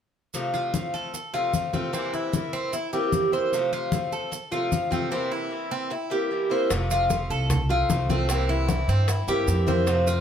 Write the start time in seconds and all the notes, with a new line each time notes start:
0.34 F2 C3 F3 A3 C4 F4, high conga, maracas
0.54 F4, high conga, maracas
0.73 F3 A3 C4 F4, high conga, maracas
0.94 A4, high conga, maracas
1.14 muted steel-string acoustic guitar stroke, high conga, maracas
1.34 C3 F3 A3 C4 F4, high conga, maracas
1.53 F3 A3 C4 F4, high conga, maracas
1.73 C3 F3 A3 C4 F4, high conga, maracas
1.93 C3 E3 A#3 C4 E4, high conga, maracas
2.14 E4, high conga, maracas
2.32 E3 A#3 C4 E4, high conga, maracas
2.53 C4, high conga, maracas
2.73 E4, muted steel-string acoustic guitar stroke, high conga, maracas
2.93 E3 A#3 C4 E4 G4, high conga, maracas
3.12 E3 A#3 C4 E4, high conga, maracas
3.32 E3 A#3 C4 E4 C5, high conga, maracas
3.52 F2 C3 F3 A3 C4 F4, high conga, maracas
3.72 F4, high conga, maracas
3.92 F3 A3 C4 F4, high conga, maracas
4.12 A4, high conga, maracas
4.31 muted steel-string acoustic guitar stroke, high conga, maracas
4.51 C3 F3 A3 C4 F4, high conga, maracas
4.71 F3 A3 C4 F4, high conga, maracas
4.90 C3 F3 A3 C4 F4, high conga, maracas
5.11 C3 E3 A#3 C4 E4
5.32 E4
5.51 E3 A#3 C4 E4
5.71 C4
5.90 E4, muted steel-string acoustic guitar stroke
6.10 E3 A#3 C4 E4 G4
6.31 E3 A#3 C4 E4
6.50 E3 A#3 C4 E4 C5
6.70 F1 C3 F3 A3 C4 F4, high bongo, high conga, maracas
6.91 F4, high bongo, high conga, maracas
7.10 F3 A3 C4 F4, high bongo, high conga, maracas
7.30 C2 A4, high conga, maracas
7.50 muted steel-string acoustic guitar stroke, high bongo, high conga, low conga, maracas
7.69 F3 A3 C4 F4, high bongo, high conga
7.89 C2 F3 A3 C4 F4, high bongo, low bongo, high conga, maracas
8.09 F3 A3 C4 F4, high bongo, high conga, maracas
8.29 C3 E3 A#3 C4 E4, high bongo, high conga, maracas
8.49 E4, high bongo, high conga
8.68 E3 A#3 C4 E4, high bongo, high conga, maracas
8.88 G2 C4, high conga, maracas
9.08 E4, muted steel-string acoustic guitar stroke, high bongo, high conga, maracas
9.27 G2 E3 A#3 C4 E4 G4, high bongo, high conga, maracas
9.47 F2 E3 A#3 C4 E4, high bongo, low bongo, high conga, maracas
9.67 E3 A#3 C4 E4 C5, high bongo, high conga, maracas
9.86 C3 F3 A3 C4 F4, high bongo, high conga, maracas
10.07 F4, high bongo, high conga, maracas